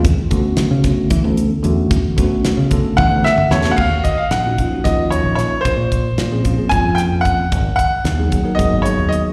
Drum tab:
CC |--------------|--------------|x-------------|--------------|
HH |x-x-x-x-x-x-x-|x-x-x-x-------|--x-x-x-x-x-x-|x-x-x-x-x-x-x-|
SD |----o-o-------|----o-----o-oo|----o---o---o-|----o-----o---|
T1 |--------------|--------o-----|--------------|--------------|
T2 |--------------|-----------o--|--------------|--------------|
BD |o-o---o-o-----|o-o---o-o-----|o-o---o-o-----|o-o---o-o---o-|

CC |--------------|
HH |x-x-x-x-x-x-x-|
SD |----o---------|
T1 |--------------|
T2 |--------------|
BD |o-o---o-o-----|